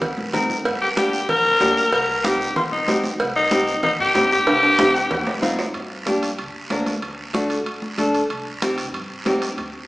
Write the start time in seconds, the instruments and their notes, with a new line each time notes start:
0.02 upright bass D#2, cowbell, high conga, low conga, long guiro
0.18 upright bass G2, high conga
0.33 upright bass G2, nylon-string guitar C4 D#4 A#4, cowbell, high conga, low conga, short guiro
0.50 high conga, short guiro
0.65 upright bass G1, cowbell, high conga, long guiro
0.82 tenor saxophone G4
0.96 nylon-string guitar A#3 D4 G4, tenor saxophone G4, cowbell, high conga, short guiro
1.13 short guiro
1.29 upright bass A#1, tenor saxophone A#4, cowbell, high conga, low conga, long guiro
1.45 upright bass D2
1.60 upright bass D2, nylon-string guitar A#3 D4 G4, cowbell, high conga, low timbale, short guiro
1.77 short guiro
1.92 upright bass C2, tenor saxophone A#4, cowbell, high conga, long guiro
2.24 nylon-string guitar C4 D#4 G4, tenor saxophone G4, cowbell, high conga, short guiro
2.41 short guiro
2.56 upright bass D#2, tenor saxophone F4, cowbell, high conga, low conga, long guiro
2.72 upright bass G2, tenor saxophone D#4
2.88 upright bass G2, nylon-string guitar C4 D#4 G4, cowbell, high conga, low timbale, short guiro
3.04 high conga, short guiro
3.19 upright bass C2, cowbell, high conga, long guiro
3.36 tenor saxophone D#4
3.51 nylon-string guitar C4 D#4 G4, cowbell, high conga, short guiro
3.68 short guiro
3.83 upright bass D#2, tenor saxophone D#4, cowbell, high conga, low conga, long guiro
3.99 upright bass G2, tenor saxophone G4
4.14 upright bass G2, nylon-string guitar C4 D#4 G4, cowbell, high conga, low timbale, short guiro
4.31 tenor saxophone G4, short guiro
4.47 upright bass C2, cowbell, high conga, high timbale, long guiro
4.63 high timbale
4.78 nylon-string guitar C4 D#4 G4, cowbell, high conga, high timbale, short guiro
4.95 short guiro
5.11 upright bass D#2, cowbell, high conga, low conga, low timbale, long guiro
5.27 upright bass G2, high conga, low timbale
5.42 upright bass G2, nylon-string guitar C4 D#4 F4, cowbell, high conga, short guiro
5.59 low timbale, short guiro
5.74 upright bass G2, high conga, high timbale, long guiro
6.06 nylon-string guitar A#3 D4 G4, high conga, high timbale, short guiro
6.23 high timbale, short guiro
6.38 upright bass D2, high conga, high timbale, long guiro
6.70 upright bass D2, nylon-string guitar A#3 D4 A#4, high conga, high timbale, low timbale, short guiro
6.86 high conga, high timbale, short guiro
7.02 upright bass D2, high conga, high timbale, long guiro
7.33 nylon-string guitar A3 D4 F#4, high conga, high timbale, short guiro
7.50 high timbale, short guiro
7.66 upright bass A1, high conga, high timbale, long guiro
7.82 high conga
7.98 upright bass A1, nylon-string guitar A3 D4 A4, high conga, high timbale, short guiro
8.14 high timbale, short guiro
8.30 upright bass C2, high conga, high timbale, long guiro
8.62 nylon-string guitar C4 D#4 G4, high conga, high timbale, short guiro
8.78 high timbale, short guiro
8.94 upright bass G2, high conga, high timbale, long guiro
9.25 upright bass G2, nylon-string guitar C4 D#4 G4, high conga, high timbale, low timbale, short guiro
9.42 high timbale, short guiro
9.58 upright bass D2, high conga, high timbale, long guiro